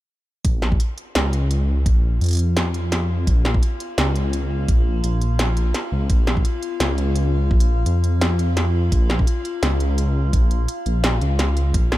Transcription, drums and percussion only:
0.45 kick loud
0.45 closed hi-hat medium
0.62 snare medium
0.72 kick loud
0.80 closed hi-hat medium
0.98 closed hi-hat soft
1.15 snare loud
1.15 closed hi-hat medium
1.33 closed hi-hat soft
1.51 closed hi-hat medium
1.86 kick loud
1.86 closed hi-hat medium
2.21 closed hi-hat soft
2.24 closed hi-hat soft
2.26 closed hi-hat soft
2.29 closed hi-hat soft
2.31 closed hi-hat soft
2.33 closed hi-hat medium
2.35 closed hi-hat medium
2.37 closed hi-hat medium
2.39 closed hi-hat soft
2.57 snare loud
2.57 closed hi-hat medium
2.74 closed hi-hat soft
2.92 snare medium
2.92 closed hi-hat medium
3.27 kick loud
3.27 closed hi-hat medium
3.45 snare medium
3.54 kick loud
3.63 closed hi-hat medium
3.80 closed hi-hat soft
3.98 snare loud
3.98 closed hi-hat medium
4.16 closed hi-hat soft
4.33 closed hi-hat medium
4.68 kick loud
4.68 closed hi-hat medium
5.04 closed hi-hat medium
5.21 closed hi-hat soft
5.39 snare loud
5.39 closed hi-hat medium
5.57 closed hi-hat soft
5.74 snare medium
5.74 closed hi-hat medium
6.10 kick loud
6.10 closed hi-hat medium
6.27 snare medium
6.37 kick loud
6.45 closed hi-hat medium
6.63 closed hi-hat soft
6.80 snare loud
6.80 closed hi-hat medium
6.98 closed hi-hat soft
7.16 closed hi-hat medium
7.51 kick loud
7.60 closed hi-hat medium
7.86 closed hi-hat medium
8.04 closed hi-hat soft
8.21 snare loud
8.21 closed hi-hat medium
8.39 closed hi-hat soft
8.57 snare medium
8.57 closed hi-hat medium
8.92 kick loud
8.92 closed hi-hat medium
9.10 snare medium
9.19 kick loud
9.27 closed hi-hat medium
9.45 closed hi-hat soft
9.63 snare loud
9.63 closed hi-hat medium
9.80 closed hi-hat soft
9.98 closed hi-hat medium
10.33 kick loud
10.33 closed hi-hat medium
10.51 closed hi-hat soft
10.68 closed hi-hat medium
10.86 closed hi-hat soft
11.04 snare loud
11.04 closed hi-hat medium
11.21 closed hi-hat soft
11.39 snare medium
11.39 closed hi-hat medium
11.57 closed hi-hat soft
11.74 kick loud
11.74 closed hi-hat medium
11.92 cross-stick medium
11.92 snare medium

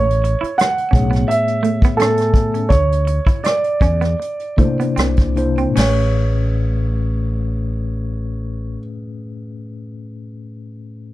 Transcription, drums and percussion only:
0.10 closed hi-hat medium
0.24 closed hi-hat medium
0.44 closed hi-hat soft
0.59 cross-stick loud
0.59 closed hi-hat medium
0.78 closed hi-hat soft
0.93 kick medium
0.93 closed hi-hat soft
1.13 cross-stick soft
1.13 closed hi-hat soft
1.31 closed hi-hat medium
1.48 closed hi-hat soft
1.64 closed hi-hat medium
1.82 kick medium
1.82 closed hi-hat soft
2.00 cross-stick loud
2.00 closed hi-hat medium
2.17 cross-stick soft
2.17 closed hi-hat soft
2.34 kick medium
2.34 closed hi-hat medium
2.54 closed hi-hat soft
2.70 kick medium
2.70 closed hi-hat medium
2.92 closed hi-hat soft
3.07 closed hi-hat medium
3.27 kick medium
3.27 closed hi-hat soft
3.44 cross-stick medium
3.44 closed hi-hat medium
3.64 closed hi-hat soft
3.81 kick medium
3.81 closed hi-hat medium
4.02 cross-stick soft
4.02 closed hi-hat soft
4.22 closed hi-hat medium
4.40 closed hi-hat soft
4.58 kick medium
4.58 closed hi-hat medium
4.80 closed hi-hat soft
4.97 cross-stick loud
4.97 closed hi-hat medium
5.16 kick medium
5.16 cross-stick soft
5.16 closed hi-hat soft
5.37 closed hi-hat medium
5.57 closed hi-hat soft
5.76 snare medium
5.76 crash medium

